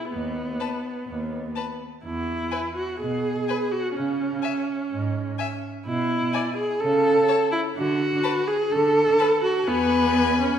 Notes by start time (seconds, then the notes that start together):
Already playing: E4
0.11 D#2 B3
0.60 B4 A5
1.07 D#2
1.56 B4 A5
2.04 E2 E4
2.51 B4 G#5
2.76 F#4
3.00 B2 G#4
3.48 B4 G#5
3.72 F#4
3.96 C#3 C#4
4.42 E5 G#5
4.92 G#2
5.38 E5 G#5
5.86 B2 E4
6.33 D5 G#5
6.57 G#4
6.81 C#3 A4
7.28 C#5 A5
7.52 E4
7.76 D3 F#4
8.23 B4 A5
8.47 G#4
8.71 D3 A4
9.19 B4 A5
9.44 F#4
9.66 E2 B3 B4 G#5
10.40 C#4